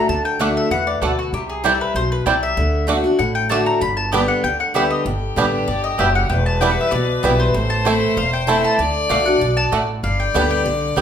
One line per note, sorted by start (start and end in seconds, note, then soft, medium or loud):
0.08 0.55 D2 medium
0.08 0.38 D3 medium
0.08 0.25 A5 medium
0.25 0.40 G5 medium
0.39 0.69 D3 medium
0.39 0.49 A3 medium
0.39 0.70 A3 medium
0.39 0.48 A3 medium
0.39 0.70 D4 medium
0.39 0.43 D4 medium
0.39 0.49 F#4 medium
0.39 0.70 F#4 medium
0.39 0.50 D5 medium
0.39 0.56 F#5 medium
0.39 0.50 F#5 medium
0.57 0.71 E5 medium
0.70 0.97 E2 medium
0.70 1.01 E3 medium
0.70 0.87 F#5 loud
0.87 1.01 D5 medium
1.01 1.28 D2 medium
1.01 1.32 B2 medium
1.01 1.11 A3 medium
1.01 1.10 A3 medium
1.01 1.05 D4 medium
1.01 1.11 F#4 medium
1.01 1.18 A4 medium
1.01 1.12 D5 medium
1.01 1.12 F#5 medium
1.19 1.33 F#4 medium
1.33 1.79 C2 medium
1.33 1.93 C3 medium
1.33 1.49 G4 medium
1.49 1.64 G#4 medium
1.64 1.93 E3 medium
1.64 1.94 G3 medium
1.64 1.72 G3 medium
1.64 1.73 C4 medium
1.64 1.94 C4 loud
1.64 1.72 C4 medium
1.64 1.74 E4 medium
1.64 1.72 E4 medium
1.64 1.95 E4 loud
1.64 1.80 A4 medium
1.64 1.74 C5 medium
1.64 1.74 G5 loud
1.81 1.95 B4 medium
1.94 2.21 B1 medium
1.94 2.25 B2 medium
1.94 2.11 C5 medium
2.12 2.26 B4 medium
2.26 2.52 C2 medium
2.26 2.56 C3 medium
2.26 2.34 G3 medium
2.26 2.35 C4 loud
2.26 2.34 C4 medium
2.26 2.36 E4 medium
2.26 2.34 E4 medium
2.26 2.36 C5 loud
2.26 2.42 D5 medium
2.26 2.36 G5 loud
2.43 2.85 E5 loud
2.57 3.04 D2 medium
2.57 2.86 D3 medium
2.87 3.03 D3 medium
2.87 2.97 A3 medium
2.87 3.04 A3 medium
2.87 2.96 A3 medium
2.87 3.04 D4 loud
2.87 2.91 D4 medium
2.87 2.97 F#4 medium
2.87 3.02 F#4 loud
2.87 2.98 D5 medium
2.87 2.98 F#5 medium
3.04 3.19 D4 medium
3.04 3.18 F#4 medium
3.19 3.66 A1 medium
3.19 3.78 A2 medium
3.19 3.35 F#5 medium
3.35 3.49 G5 loud
3.49 3.79 D3 medium
3.49 3.60 A3 medium
3.49 3.80 A3 medium
3.49 3.58 A3 medium
3.49 3.80 D4 medium
3.49 3.54 D4 medium
3.49 3.60 F#4 medium
3.49 3.81 F#4 loud
3.49 3.60 D5 medium
3.49 3.60 F#5 loud
3.49 3.66 A5 medium
3.66 3.81 A#5 medium
3.81 4.28 G1 medium
3.81 4.41 G2 medium
3.81 3.96 B5 loud
3.97 4.12 A5 medium
4.12 4.42 D3 medium
4.12 4.43 G3 medium
4.12 4.20 G3 medium
4.12 4.22 B3 medium
4.12 4.43 B3 medium
4.12 4.20 B3 medium
4.12 4.21 D4 medium
4.12 4.22 G4 medium
4.12 4.43 G4 medium
4.12 4.22 D5 medium
4.12 4.28 G5 medium
4.12 4.22 G5 medium
4.28 4.43 F#5 medium
4.44 4.90 D2 medium
4.44 4.73 D3 medium
4.44 4.59 G5 medium
4.60 4.74 F#5 medium
4.74 5.04 D3 medium
4.74 5.05 G3 medium
4.74 4.82 G3 medium
4.74 4.84 B3 medium
4.74 5.05 B3 medium
4.74 4.83 B3 medium
4.74 4.83 D4 medium
4.74 4.84 G4 medium
4.74 5.05 G4 loud
4.74 4.84 D5 loud
4.74 4.90 E5 medium
4.74 4.84 G5 medium
4.90 5.05 D#5 medium
5.05 5.29 G1 medium
5.05 5.65 G2 medium
5.05 6.32 G4 medium
5.36 5.63 A1 medium
5.36 5.66 D3 medium
5.36 5.67 G3 medium
5.36 5.44 G3 medium
5.36 5.46 B3 medium
5.36 5.67 B3 medium
5.36 5.45 B3 medium
5.36 5.45 D4 medium
5.36 5.46 G4 medium
5.36 5.67 G4 medium
5.36 5.46 D5 medium
5.36 5.46 G5 medium
5.68 5.94 G1 medium
5.68 5.97 G2 medium
5.68 5.83 D5 medium
5.84 5.98 D#5 medium
5.98 6.25 F#1 medium
5.98 6.28 F#2 medium
5.98 6.07 G3 medium
5.98 6.08 B3 loud
5.98 6.07 B3 medium
5.98 6.07 D4 medium
5.98 6.08 G4 medium
5.98 6.08 D5 loud
5.98 6.15 E5 medium
5.98 6.08 G5 loud
6.15 6.29 F#5 medium
6.29 6.76 E1 medium
6.29 6.89 E2 medium
6.29 7.55 B4 loud
6.29 6.46 G5 medium
6.46 6.60 A5 medium
6.60 6.91 E3 medium
6.60 6.91 G3 medium
6.60 6.69 G3 medium
6.60 6.70 B3 medium
6.60 6.91 B3 medium
6.60 6.69 B3 medium
6.60 6.70 E4 medium
6.60 6.91 E4 loud
6.60 6.69 E4 medium
6.60 6.71 B4 medium
6.60 6.71 G5 medium
6.60 6.71 G5 loud
6.71 6.80 F#5 medium
6.81 6.91 E5 medium
6.91 7.18 C2 medium
6.91 7.51 B2 medium
6.91 7.36 D5 medium
7.23 7.50 B1 medium
7.23 7.53 E3 medium
7.23 7.53 G3 medium
7.23 7.31 G3 medium
7.23 7.32 B3 medium
7.23 7.54 B3 medium
7.23 7.31 B3 medium
7.23 7.33 E4 medium
7.23 7.31 E4 medium
7.23 7.54 E4 loud
7.23 7.33 B4 medium
7.23 7.33 G5 loud
7.40 7.54 C5 loud
7.54 8.01 A1 medium
7.54 8.14 A2 medium
7.54 8.78 C5 loud
7.70 7.85 A5 loud
7.85 8.15 E3 medium
7.85 7.94 A3 medium
7.85 8.15 A3 medium
7.85 7.93 A3 medium
7.85 7.93 C4 medium
7.85 8.16 C4 medium
7.85 7.95 E4 medium
7.85 7.93 E4 medium
7.85 8.16 E4 loud
7.85 7.95 C5 medium
7.85 7.95 A5 medium
8.17 8.63 E1 medium
8.17 8.76 E2 medium
8.17 8.33 F5 medium
8.33 8.62 G5 medium
8.47 8.77 E3 loud
8.47 8.57 A3 medium
8.47 8.77 A3 medium
8.47 8.55 A3 medium
8.47 8.78 C4 medium
8.47 8.55 C4 medium
8.47 8.57 E4 medium
8.47 8.55 E4 medium
8.47 8.78 E4 loud
8.47 8.57 C5 medium
8.47 8.57 A5 loud
8.65 8.79 A5 loud
8.79 9.02 D2 medium
8.79 9.08 D3 medium
8.79 9.84 D5 loud
9.09 9.36 C2 medium
9.09 9.25 D3 medium
9.09 9.19 A3 medium
9.09 9.17 A3 medium
9.09 9.26 A3 medium
9.09 9.26 D4 medium
9.09 9.13 D4 medium
9.09 9.19 F#4 medium
9.09 9.25 F#4 loud
9.09 9.19 D5 medium
9.09 9.25 F5 medium
9.09 9.19 F#5 loud
9.26 9.41 D4 soft
9.26 9.40 F#4 medium
9.26 9.55 F#5 medium
9.41 9.67 B1 medium
9.41 9.71 B2 medium
9.57 9.72 A5 loud
9.72 9.99 A1 medium
9.72 10.02 A2 medium
9.72 9.81 A3 medium
9.72 9.80 A3 medium
9.72 9.75 D4 medium
9.72 9.82 F#4 loud
9.72 9.82 D5 loud
9.72 9.82 F#5 loud
10.03 10.26 G1 medium
10.03 10.63 G2 medium
10.03 11.01 D5 loud
10.03 10.19 F5 medium
10.20 10.49 G5 medium
10.34 10.61 D2 medium
10.34 10.64 D3 medium
10.34 10.64 G3 medium
10.34 10.42 G3 medium
10.34 10.44 B3 medium
10.34 10.65 B3 medium
10.34 10.42 B3 medium
10.34 10.42 D4 medium
10.34 10.44 G4 medium
10.34 10.65 G4 loud
10.34 10.44 D5 medium
10.34 10.44 G5 medium
10.51 10.60 G5 loud
10.66 10.92 C2 medium
10.66 10.95 D3 medium
10.96 11.01 B1 medium
10.96 11.01 D3 medium
10.96 11.01 G3 medium
10.96 11.01 B3 medium
10.96 11.01 D4 medium
10.96 11.01 G4 medium
10.96 11.01 D5 loud
10.96 11.01 G5 loud